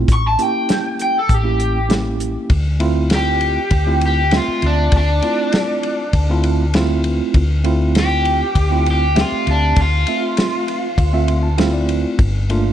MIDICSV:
0, 0, Header, 1, 6, 480
1, 0, Start_track
1, 0, Key_signature, -1, "minor"
1, 0, Tempo, 605449
1, 66, Time_signature, 4, 2, 24, 8
1, 10090, End_track
2, 0, Start_track
2, 0, Title_t, "Overdriven electric guitar"
2, 0, Program_c, 0, 29
2, 103, Note_on_c, 0, 85, 87
2, 205, Note_off_c, 0, 85, 0
2, 218, Note_on_c, 0, 81, 81
2, 335, Note_off_c, 0, 81, 0
2, 335, Note_on_c, 0, 79, 85
2, 788, Note_off_c, 0, 79, 0
2, 811, Note_on_c, 0, 79, 88
2, 919, Note_off_c, 0, 79, 0
2, 944, Note_on_c, 0, 69, 78
2, 1064, Note_off_c, 0, 69, 0
2, 1064, Note_on_c, 0, 67, 95
2, 1513, Note_off_c, 0, 67, 0
2, 2501, Note_on_c, 0, 67, 101
2, 3184, Note_off_c, 0, 67, 0
2, 3220, Note_on_c, 0, 67, 73
2, 3438, Note_off_c, 0, 67, 0
2, 3465, Note_on_c, 0, 65, 80
2, 3680, Note_off_c, 0, 65, 0
2, 3697, Note_on_c, 0, 62, 87
2, 3917, Note_off_c, 0, 62, 0
2, 3941, Note_on_c, 0, 62, 84
2, 5333, Note_off_c, 0, 62, 0
2, 6340, Note_on_c, 0, 67, 92
2, 7023, Note_off_c, 0, 67, 0
2, 7061, Note_on_c, 0, 67, 75
2, 7278, Note_off_c, 0, 67, 0
2, 7298, Note_on_c, 0, 65, 86
2, 7516, Note_off_c, 0, 65, 0
2, 7537, Note_on_c, 0, 62, 86
2, 7755, Note_off_c, 0, 62, 0
2, 7778, Note_on_c, 0, 65, 85
2, 9169, Note_off_c, 0, 65, 0
2, 10090, End_track
3, 0, Start_track
3, 0, Title_t, "Tine electric piano"
3, 0, Program_c, 1, 4
3, 306, Note_on_c, 1, 61, 69
3, 308, Note_on_c, 1, 58, 79
3, 314, Note_on_c, 1, 64, 71
3, 316, Note_on_c, 1, 67, 82
3, 930, Note_off_c, 1, 61, 0
3, 932, Note_off_c, 1, 58, 0
3, 935, Note_off_c, 1, 64, 0
3, 936, Note_off_c, 1, 67, 0
3, 1137, Note_on_c, 1, 58, 70
3, 1140, Note_on_c, 1, 61, 62
3, 1146, Note_on_c, 1, 64, 65
3, 1150, Note_on_c, 1, 67, 79
3, 1409, Note_off_c, 1, 58, 0
3, 1411, Note_off_c, 1, 61, 0
3, 1414, Note_off_c, 1, 64, 0
3, 1416, Note_off_c, 1, 67, 0
3, 1497, Note_on_c, 1, 61, 66
3, 1499, Note_on_c, 1, 58, 70
3, 1506, Note_on_c, 1, 64, 65
3, 1507, Note_on_c, 1, 67, 78
3, 1983, Note_off_c, 1, 61, 0
3, 1984, Note_off_c, 1, 58, 0
3, 1987, Note_off_c, 1, 64, 0
3, 1988, Note_off_c, 1, 67, 0
3, 2216, Note_on_c, 1, 57, 85
3, 2217, Note_on_c, 1, 60, 77
3, 2221, Note_on_c, 1, 64, 85
3, 2228, Note_on_c, 1, 65, 104
3, 2846, Note_off_c, 1, 57, 0
3, 2847, Note_off_c, 1, 60, 0
3, 2849, Note_off_c, 1, 64, 0
3, 2852, Note_off_c, 1, 65, 0
3, 3064, Note_on_c, 1, 57, 70
3, 3068, Note_on_c, 1, 60, 65
3, 3070, Note_on_c, 1, 64, 67
3, 3074, Note_on_c, 1, 65, 77
3, 3334, Note_off_c, 1, 57, 0
3, 3336, Note_off_c, 1, 60, 0
3, 3337, Note_off_c, 1, 64, 0
3, 3339, Note_off_c, 1, 65, 0
3, 3424, Note_on_c, 1, 57, 75
3, 3424, Note_on_c, 1, 60, 67
3, 3431, Note_on_c, 1, 76, 71
3, 3436, Note_on_c, 1, 65, 88
3, 3960, Note_off_c, 1, 60, 0
3, 3961, Note_off_c, 1, 57, 0
3, 3964, Note_off_c, 1, 76, 0
3, 3966, Note_off_c, 1, 65, 0
3, 4141, Note_on_c, 1, 57, 75
3, 4143, Note_on_c, 1, 60, 68
3, 4147, Note_on_c, 1, 64, 70
3, 4152, Note_on_c, 1, 65, 80
3, 4769, Note_off_c, 1, 57, 0
3, 4770, Note_off_c, 1, 60, 0
3, 4772, Note_off_c, 1, 64, 0
3, 4774, Note_off_c, 1, 65, 0
3, 4992, Note_on_c, 1, 57, 84
3, 4996, Note_on_c, 1, 60, 77
3, 4997, Note_on_c, 1, 64, 85
3, 5004, Note_on_c, 1, 65, 98
3, 5258, Note_off_c, 1, 57, 0
3, 5260, Note_off_c, 1, 60, 0
3, 5260, Note_off_c, 1, 64, 0
3, 5264, Note_off_c, 1, 65, 0
3, 5345, Note_on_c, 1, 57, 87
3, 5348, Note_on_c, 1, 60, 84
3, 5352, Note_on_c, 1, 64, 85
3, 5359, Note_on_c, 1, 65, 103
3, 5881, Note_off_c, 1, 57, 0
3, 5882, Note_off_c, 1, 60, 0
3, 5884, Note_off_c, 1, 64, 0
3, 5887, Note_off_c, 1, 65, 0
3, 6055, Note_on_c, 1, 57, 90
3, 6061, Note_on_c, 1, 60, 86
3, 6068, Note_on_c, 1, 64, 79
3, 6068, Note_on_c, 1, 65, 102
3, 6685, Note_off_c, 1, 57, 0
3, 6688, Note_off_c, 1, 60, 0
3, 6692, Note_off_c, 1, 64, 0
3, 6692, Note_off_c, 1, 65, 0
3, 6899, Note_on_c, 1, 57, 70
3, 6902, Note_on_c, 1, 60, 72
3, 6908, Note_on_c, 1, 64, 69
3, 6915, Note_on_c, 1, 65, 82
3, 7170, Note_off_c, 1, 57, 0
3, 7172, Note_off_c, 1, 60, 0
3, 7175, Note_off_c, 1, 64, 0
3, 7178, Note_off_c, 1, 65, 0
3, 7255, Note_on_c, 1, 57, 79
3, 7258, Note_on_c, 1, 60, 71
3, 7261, Note_on_c, 1, 76, 73
3, 7266, Note_on_c, 1, 67, 86
3, 7795, Note_off_c, 1, 57, 0
3, 7796, Note_off_c, 1, 60, 0
3, 7798, Note_off_c, 1, 76, 0
3, 7800, Note_off_c, 1, 67, 0
3, 7991, Note_on_c, 1, 57, 74
3, 7994, Note_on_c, 1, 76, 69
3, 7995, Note_on_c, 1, 60, 67
3, 7999, Note_on_c, 1, 65, 86
3, 8612, Note_off_c, 1, 57, 0
3, 8614, Note_off_c, 1, 60, 0
3, 8614, Note_off_c, 1, 76, 0
3, 8616, Note_off_c, 1, 65, 0
3, 8824, Note_on_c, 1, 60, 75
3, 8825, Note_on_c, 1, 57, 89
3, 8831, Note_on_c, 1, 76, 79
3, 8835, Note_on_c, 1, 65, 89
3, 8943, Note_on_c, 1, 84, 66
3, 9059, Note_off_c, 1, 84, 0
3, 9059, Note_on_c, 1, 81, 68
3, 9092, Note_off_c, 1, 57, 0
3, 9092, Note_off_c, 1, 60, 0
3, 9095, Note_off_c, 1, 76, 0
3, 9097, Note_off_c, 1, 65, 0
3, 9173, Note_off_c, 1, 81, 0
3, 9177, Note_on_c, 1, 57, 88
3, 9178, Note_on_c, 1, 60, 83
3, 9179, Note_on_c, 1, 64, 83
3, 9181, Note_on_c, 1, 77, 75
3, 9188, Note_on_c, 1, 65, 102
3, 9298, Note_off_c, 1, 77, 0
3, 9303, Note_on_c, 1, 74, 66
3, 9637, Note_off_c, 1, 74, 0
3, 9661, Note_off_c, 1, 57, 0
3, 9662, Note_off_c, 1, 60, 0
3, 9662, Note_off_c, 1, 64, 0
3, 9667, Note_off_c, 1, 65, 0
3, 9907, Note_on_c, 1, 57, 88
3, 9908, Note_on_c, 1, 58, 83
3, 9914, Note_on_c, 1, 62, 83
3, 9917, Note_on_c, 1, 65, 98
3, 10090, Note_off_c, 1, 57, 0
3, 10090, Note_off_c, 1, 58, 0
3, 10090, Note_off_c, 1, 62, 0
3, 10090, Note_off_c, 1, 65, 0
3, 10090, End_track
4, 0, Start_track
4, 0, Title_t, "Fingered electric bass"
4, 0, Program_c, 2, 33
4, 65, Note_on_c, 2, 33, 105
4, 276, Note_off_c, 2, 33, 0
4, 1025, Note_on_c, 2, 33, 91
4, 1867, Note_off_c, 2, 33, 0
4, 1984, Note_on_c, 2, 38, 87
4, 2827, Note_off_c, 2, 38, 0
4, 2942, Note_on_c, 2, 38, 92
4, 3473, Note_off_c, 2, 38, 0
4, 3667, Note_on_c, 2, 38, 78
4, 3878, Note_off_c, 2, 38, 0
4, 3905, Note_on_c, 2, 38, 98
4, 4117, Note_off_c, 2, 38, 0
4, 4862, Note_on_c, 2, 38, 94
4, 5705, Note_off_c, 2, 38, 0
4, 5827, Note_on_c, 2, 38, 96
4, 6667, Note_off_c, 2, 38, 0
4, 6782, Note_on_c, 2, 38, 89
4, 7312, Note_off_c, 2, 38, 0
4, 7508, Note_on_c, 2, 38, 79
4, 7718, Note_off_c, 2, 38, 0
4, 7743, Note_on_c, 2, 38, 101
4, 7955, Note_off_c, 2, 38, 0
4, 8703, Note_on_c, 2, 38, 95
4, 9544, Note_off_c, 2, 38, 0
4, 9664, Note_on_c, 2, 31, 93
4, 10090, Note_off_c, 2, 31, 0
4, 10090, End_track
5, 0, Start_track
5, 0, Title_t, "Muted fingered electric bass strokes"
5, 3552, Note_on_c, 9, 29, 33
5, 3631, Note_off_c, 9, 29, 0
5, 7387, Note_on_c, 9, 29, 34
5, 7466, Note_off_c, 9, 29, 0
5, 10090, End_track
6, 0, Start_track
6, 0, Title_t, "Drums"
6, 66, Note_on_c, 9, 36, 99
6, 67, Note_on_c, 9, 42, 89
6, 145, Note_off_c, 9, 36, 0
6, 147, Note_off_c, 9, 42, 0
6, 308, Note_on_c, 9, 42, 59
6, 387, Note_off_c, 9, 42, 0
6, 546, Note_on_c, 9, 42, 81
6, 557, Note_on_c, 9, 38, 103
6, 626, Note_off_c, 9, 42, 0
6, 636, Note_off_c, 9, 38, 0
6, 788, Note_on_c, 9, 42, 56
6, 868, Note_off_c, 9, 42, 0
6, 1026, Note_on_c, 9, 36, 87
6, 1026, Note_on_c, 9, 42, 84
6, 1105, Note_off_c, 9, 36, 0
6, 1105, Note_off_c, 9, 42, 0
6, 1266, Note_on_c, 9, 42, 59
6, 1346, Note_off_c, 9, 42, 0
6, 1506, Note_on_c, 9, 42, 74
6, 1516, Note_on_c, 9, 38, 109
6, 1585, Note_off_c, 9, 42, 0
6, 1595, Note_off_c, 9, 38, 0
6, 1747, Note_on_c, 9, 42, 59
6, 1826, Note_off_c, 9, 42, 0
6, 1980, Note_on_c, 9, 51, 81
6, 1982, Note_on_c, 9, 36, 105
6, 2060, Note_off_c, 9, 51, 0
6, 2061, Note_off_c, 9, 36, 0
6, 2220, Note_on_c, 9, 51, 61
6, 2300, Note_off_c, 9, 51, 0
6, 2457, Note_on_c, 9, 51, 83
6, 2467, Note_on_c, 9, 38, 101
6, 2536, Note_off_c, 9, 51, 0
6, 2546, Note_off_c, 9, 38, 0
6, 2701, Note_on_c, 9, 51, 56
6, 2780, Note_off_c, 9, 51, 0
6, 2938, Note_on_c, 9, 51, 81
6, 2943, Note_on_c, 9, 36, 83
6, 3018, Note_off_c, 9, 51, 0
6, 3022, Note_off_c, 9, 36, 0
6, 3182, Note_on_c, 9, 51, 66
6, 3261, Note_off_c, 9, 51, 0
6, 3420, Note_on_c, 9, 51, 82
6, 3430, Note_on_c, 9, 38, 113
6, 3499, Note_off_c, 9, 51, 0
6, 3509, Note_off_c, 9, 38, 0
6, 3664, Note_on_c, 9, 51, 62
6, 3743, Note_off_c, 9, 51, 0
6, 3899, Note_on_c, 9, 51, 84
6, 3903, Note_on_c, 9, 36, 109
6, 3978, Note_off_c, 9, 51, 0
6, 3983, Note_off_c, 9, 36, 0
6, 4142, Note_on_c, 9, 51, 62
6, 4221, Note_off_c, 9, 51, 0
6, 4380, Note_on_c, 9, 51, 75
6, 4391, Note_on_c, 9, 38, 107
6, 4460, Note_off_c, 9, 51, 0
6, 4470, Note_off_c, 9, 38, 0
6, 4624, Note_on_c, 9, 51, 55
6, 4703, Note_off_c, 9, 51, 0
6, 4861, Note_on_c, 9, 51, 77
6, 4863, Note_on_c, 9, 36, 83
6, 4940, Note_off_c, 9, 51, 0
6, 4942, Note_off_c, 9, 36, 0
6, 5103, Note_on_c, 9, 51, 57
6, 5182, Note_off_c, 9, 51, 0
6, 5341, Note_on_c, 9, 51, 80
6, 5351, Note_on_c, 9, 38, 109
6, 5420, Note_off_c, 9, 51, 0
6, 5431, Note_off_c, 9, 38, 0
6, 5581, Note_on_c, 9, 51, 58
6, 5660, Note_off_c, 9, 51, 0
6, 5821, Note_on_c, 9, 51, 79
6, 5822, Note_on_c, 9, 36, 107
6, 5900, Note_off_c, 9, 51, 0
6, 5901, Note_off_c, 9, 36, 0
6, 6060, Note_on_c, 9, 51, 60
6, 6140, Note_off_c, 9, 51, 0
6, 6304, Note_on_c, 9, 51, 83
6, 6314, Note_on_c, 9, 38, 110
6, 6383, Note_off_c, 9, 51, 0
6, 6393, Note_off_c, 9, 38, 0
6, 6543, Note_on_c, 9, 51, 60
6, 6622, Note_off_c, 9, 51, 0
6, 6782, Note_on_c, 9, 36, 86
6, 6783, Note_on_c, 9, 51, 91
6, 6861, Note_off_c, 9, 36, 0
6, 6862, Note_off_c, 9, 51, 0
6, 7026, Note_on_c, 9, 51, 64
6, 7106, Note_off_c, 9, 51, 0
6, 7263, Note_on_c, 9, 51, 89
6, 7273, Note_on_c, 9, 38, 107
6, 7342, Note_off_c, 9, 51, 0
6, 7353, Note_off_c, 9, 38, 0
6, 7506, Note_on_c, 9, 51, 63
6, 7586, Note_off_c, 9, 51, 0
6, 7740, Note_on_c, 9, 51, 90
6, 7743, Note_on_c, 9, 36, 108
6, 7820, Note_off_c, 9, 51, 0
6, 7822, Note_off_c, 9, 36, 0
6, 7981, Note_on_c, 9, 51, 63
6, 8060, Note_off_c, 9, 51, 0
6, 8222, Note_on_c, 9, 51, 78
6, 8233, Note_on_c, 9, 38, 102
6, 8302, Note_off_c, 9, 51, 0
6, 8312, Note_off_c, 9, 38, 0
6, 8467, Note_on_c, 9, 51, 56
6, 8547, Note_off_c, 9, 51, 0
6, 8704, Note_on_c, 9, 36, 89
6, 8706, Note_on_c, 9, 51, 82
6, 8783, Note_off_c, 9, 36, 0
6, 8785, Note_off_c, 9, 51, 0
6, 8944, Note_on_c, 9, 51, 55
6, 9023, Note_off_c, 9, 51, 0
6, 9182, Note_on_c, 9, 51, 79
6, 9192, Note_on_c, 9, 38, 109
6, 9261, Note_off_c, 9, 51, 0
6, 9272, Note_off_c, 9, 38, 0
6, 9424, Note_on_c, 9, 51, 60
6, 9503, Note_off_c, 9, 51, 0
6, 9663, Note_on_c, 9, 36, 116
6, 9663, Note_on_c, 9, 51, 79
6, 9742, Note_off_c, 9, 36, 0
6, 9743, Note_off_c, 9, 51, 0
6, 9908, Note_on_c, 9, 51, 60
6, 9987, Note_off_c, 9, 51, 0
6, 10090, End_track
0, 0, End_of_file